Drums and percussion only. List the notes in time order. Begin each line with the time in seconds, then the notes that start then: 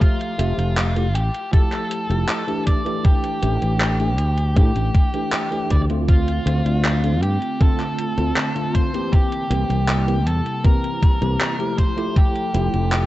0.01 kick, closed hi-hat
0.21 closed hi-hat
0.39 closed hi-hat
0.59 closed hi-hat
0.78 clap, closed hi-hat
0.96 closed hi-hat
1.15 closed hi-hat
1.34 closed hi-hat
1.53 kick, closed hi-hat
1.72 clap, closed hi-hat
1.91 closed hi-hat
2.10 closed hi-hat
2.29 clap, closed hi-hat
2.48 closed hi-hat
2.67 kick, closed hi-hat
2.86 closed hi-hat
3.05 kick, closed hi-hat
3.24 closed hi-hat
3.43 closed hi-hat
3.62 closed hi-hat
3.81 clap, closed hi-hat
4.00 closed hi-hat
4.18 closed hi-hat
4.38 closed hi-hat
4.57 kick, closed hi-hat
4.76 closed hi-hat
4.95 kick, closed hi-hat
5.14 closed hi-hat
5.33 clap, closed hi-hat
5.52 closed hi-hat
5.70 kick, closed hi-hat
5.90 closed hi-hat
6.08 kick, closed hi-hat
6.28 closed hi-hat
6.47 closed hi-hat
6.66 closed hi-hat
6.85 clap, closed hi-hat
7.04 closed hi-hat
7.23 closed hi-hat
7.42 closed hi-hat
7.61 kick, closed hi-hat
7.80 clap, closed hi-hat
7.98 closed hi-hat
8.18 closed hi-hat
8.36 clap, closed hi-hat
8.56 closed hi-hat
8.75 kick, closed hi-hat
8.94 closed hi-hat
9.13 kick, closed hi-hat
9.32 closed hi-hat
9.51 closed hi-hat
9.70 closed hi-hat
9.89 clap, closed hi-hat
10.08 closed hi-hat
10.27 closed hi-hat
10.46 closed hi-hat
10.65 kick, closed hi-hat
10.84 closed hi-hat
11.02 kick, closed hi-hat
11.22 closed hi-hat
11.41 clap, closed hi-hat
11.60 closed hi-hat
11.78 kick, closed hi-hat
11.98 closed hi-hat
12.16 kick, closed hi-hat
12.36 closed hi-hat
12.55 closed hi-hat
12.74 closed hi-hat
12.92 clap, closed hi-hat